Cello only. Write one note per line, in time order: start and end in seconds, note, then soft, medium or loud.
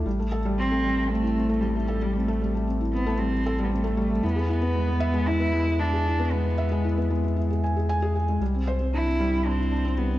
0.59 1.11 C4 loud
1.09 1.62 A3 loud
1.61 1.71 G3 medium
1.70 1.76 A3 medium
1.74 2.14 G3 loud
2.13 2.66 A3 medium
2.92 3.20 B3 medium
3.19 3.65 C4 loud
3.64 3.72 B3 medium
3.71 4.25 A3 medium
4.24 4.48 B3 loud
4.49 5.29 B3 loud
5.28 5.81 E4 loud
5.80 6.33 D4 loud
6.32 7.10 B3 loud
8.94 9.48 E4 loud
9.46 9.99 C4 loud
9.97 10.19 B3 medium